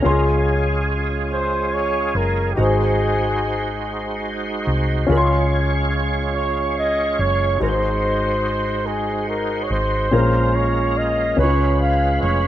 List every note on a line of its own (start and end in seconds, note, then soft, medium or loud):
0.00 2.52 C#4 medium
0.00 2.53 F4 medium
0.00 0.24 A#4 medium
0.04 2.11 C#2 medium
0.04 1.27 C#3 medium
0.04 2.54 G#3 medium
0.04 2.54 C#4 medium
0.04 2.53 F4 medium
0.04 2.53 G#4 medium
0.04 2.54 G#4 medium
0.04 2.54 C6 medium
1.32 1.75 C5 medium
1.74 2.18 C#5 medium
2.15 2.54 F#1 medium
2.15 2.51 A#4 medium
2.53 3.79 G#2 soft
2.53 5.05 D#4 soft
2.53 5.05 F#4 medium
2.53 2.62 G4 soft
2.57 4.64 G#1 medium
2.57 5.05 G#3 soft
2.57 5.05 D#4 medium
2.57 5.06 F#4 soft
2.57 5.06 G#4 medium
2.57 4.27 G#4 medium
2.57 2.64 A#4 soft
2.57 5.06 C5 medium
2.64 5.09 C5 medium
4.67 5.06 C2 medium
5.07 7.15 C#2 medium
5.07 6.31 C#3 medium
5.07 7.58 G#3 medium
5.07 7.56 C#4 medium
5.07 7.58 C#4 medium
5.07 7.56 F4 medium
5.07 7.58 F4 medium
5.07 7.57 G#4 medium
5.07 5.17 B4 medium
5.11 5.17 A#4 medium
5.17 7.61 C#5 medium
5.17 7.61 C6 medium
6.35 6.74 C#5 medium
6.78 7.22 D#5 medium
7.19 7.58 F#1 medium
7.19 7.61 C#5 medium
7.58 9.67 G#1 medium
7.58 8.83 G#2 medium
7.58 10.09 G#3 medium
7.58 10.07 D#4 medium
7.58 10.08 F#4 soft
7.58 10.09 G#4 soft
7.58 7.68 A#4 soft
7.58 8.88 C5 medium
7.62 10.10 D#4 soft
7.62 10.10 F#4 soft
7.62 7.68 A#4 soft
7.69 10.13 C5 medium
8.87 9.29 G#4 medium
9.29 9.64 A#4 medium
9.63 9.73 C#5 medium
9.70 10.09 G#1 medium
9.70 10.57 C5 medium
10.11 11.35 A#1 medium
10.11 11.34 A#2 soft
10.11 11.38 G#3 soft
10.11 11.35 C#4 medium
10.11 11.38 C#4 soft
10.11 11.38 F4 soft
10.11 11.39 F4 soft
10.11 11.37 G#4 soft
10.11 11.39 A#4 soft
10.11 11.39 A#4 medium
10.55 10.99 C#5 medium
10.98 11.38 D#5 medium
11.37 12.18 C#2 medium
11.37 12.47 C#3 soft
11.37 12.47 G#3 medium
11.37 12.47 C#4 medium
11.37 12.47 C#4 soft
11.37 11.44 D#4 soft
11.37 12.47 F4 soft
11.37 12.47 G#4 soft
11.37 12.47 B4 medium
11.37 11.78 C#5 medium
11.43 12.47 F4 soft
11.81 12.20 F5 medium
12.21 12.47 F1 medium
12.21 12.47 C#5 medium